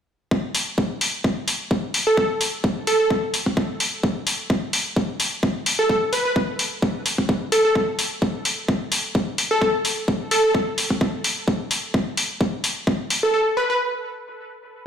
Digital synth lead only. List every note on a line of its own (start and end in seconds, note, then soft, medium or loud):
2.07 2.14 A4 medium
2.17 2.25 A4 medium
2.87 2.95 A4 medium
3.00 3.07 A4 medium
5.79 5.86 A4 medium
5.89 5.98 A4 medium
6.13 6.21 B4 medium
6.25 6.32 B4 medium
7.52 7.60 A4 medium
7.65 7.72 A4 medium
9.51 9.58 A4 medium
9.61 9.70 A4 medium
10.31 10.39 A4 medium
10.44 10.51 A4 medium
13.23 13.30 A4 medium
13.34 13.42 A4 medium
13.57 13.65 B4 medium
13.70 13.76 B4 medium